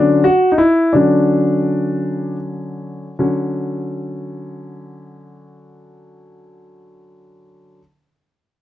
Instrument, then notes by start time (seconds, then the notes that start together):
grand piano
Already playing: D3 F#3 C#4 D4
0.24 F#4
0.52 D#4
0.58 E4
0.93 D3 F#3 C#4 D4
3.19 D3 F#3 C#4